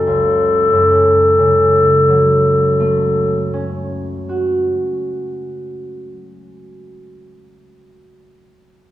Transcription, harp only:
0.00 3.42 F#1 soft
0.00 2.02 A3 soft
0.00 2.03 C#4 soft
0.00 2.03 F#4 soft
0.07 4.05 C#2 soft
0.72 4.70 F#2 soft
1.38 5.37 C#3 soft
2.08 6.07 F#3 soft
2.80 6.78 A3 soft
3.53 7.52 C#4 soft
4.29 8.19 F#4 soft

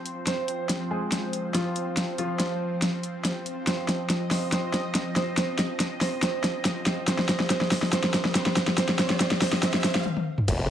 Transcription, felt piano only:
0.00 0.19 C4 medium
0.00 0.19 C5 medium
0.27 0.82 C4 medium
0.27 0.82 C5 loud
0.91 1.46 G#3 medium
0.91 1.46 G#4 medium
1.54 2.10 F3 medium
1.54 2.10 F4 medium
2.18 3.59 F3 medium
2.18 3.59 F4 medium
3.67 4.23 C4 medium
3.67 4.23 C5 medium
4.31 4.51 C4 medium
4.31 4.51 C5 medium
4.52 5.08 C4 medium
4.52 5.08 C5 medium
5.16 5.36 C4 medium
5.16 5.36 C5 medium
5.37 5.93 C4 medium
5.37 5.93 C5 medium
6.01 6.21 C4 medium
6.01 6.21 C5 medium
6.23 6.78 C4 medium
6.23 6.78 C5 medium
6.86 7.06 C4 medium
6.86 7.06 C5 medium
7.08 7.49 C4 medium
7.08 7.49 C5 loud
7.50 7.91 C4 medium
7.50 7.91 C5 loud
7.93 8.34 C4 medium
7.93 8.34 C5 loud
8.35 8.76 C4 medium
8.35 8.76 C5 loud
8.78 8.98 C4 medium
8.78 8.98 C5 loud
8.99 9.19 C4 medium
8.99 9.19 C5 loud
9.21 9.40 C4 medium
9.21 9.40 C5 loud
9.42 9.61 C4 medium
9.42 9.61 C5 loud
9.63 9.83 C4 medium
9.63 9.83 C5 loud
9.84 10.04 C4 medium
9.84 10.04 C5 loud

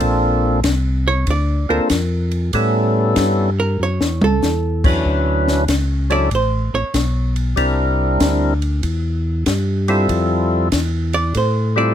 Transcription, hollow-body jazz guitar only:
1.08 1.28 C#5 loud
1.31 1.70 D5 medium
1.70 2.50 A#4 medium
3.60 3.80 A#4 medium
3.83 4.22 C#5 loud
4.24 5.03 A4 medium
6.12 6.32 D5 medium
6.35 6.74 C5 medium
6.75 7.33 C#5 medium
11.14 11.35 D5 loud
11.37 11.77 C5 medium
11.78 11.94 D5 medium

